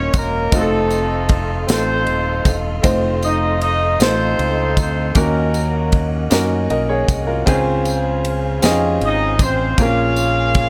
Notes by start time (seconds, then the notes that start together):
Already playing: D#1 A#3 C#4 D#4 F#4 A#4 C#5 D#5 C6
0.14 E1, kick, ride, tambourine
0.18 A#3 A#4
0.51 F1 A3 C4 D#4 F4 F#4 A4 F5 C6, kick, ride, tambourine
0.56 A3 C4 D#4 A4
0.61 A4
0.90 ride, tambourine
1.29 A3 A4, kick, ride
1.67 A1 A3 C4 D#4 F4 A4, snare, ride, tambourine
1.72 C4 D#4 A4 C5
2.07 D#1, ride
2.45 E1, kick, ride, tambourine
2.82 F1 A3 C4 D#4 F4 C5, kick, ride, tambourine
3.22 D#4 D#5, ride, tambourine
3.61 D#4 D#5, ride
3.99 A1 A3 C4 D#4 F4 A4 C5, snare, ride, tambourine
4.39 C#2, ride
4.77 D2, kick, ride, tambourine
4.81 C4 C5
5.15 D#2 D#3 A#3 C#4 D#4 F#4 A#4 F#5, kick, ride, tambourine
5.19 A#3 A#4
5.54 ride, tambourine
5.92 kick, ride
6.30 F#2 A#3 C#4 D#4 F#4 A#4, snare, ride, tambourine
6.70 B1 A#4 D#5, ride
6.89 G#4 C#5
7.08 C2, kick, ride, tambourine
7.27 F4 A#4
7.46 C#2 C#3 C4 C#4 D#4 G#4 C5 F5 G#5, kick, ride, tambourine
7.54 F4
7.85 ride, tambourine
8.25 ride
8.62 F2 C4 C#4 D#4 G#4 D#5, snare, ride, tambourine
8.70 F4
9.01 G#1, ride
9.06 D#4 D#5
9.39 A1 C4 C5, kick, ride, tambourine
9.78 A#1 A#2 A#3 C4 F4 G#4 A#4 C#5, kick, ride, tambourine
9.82 C#4 F4 F5
10.16 ride, tambourine
10.54 kick, ride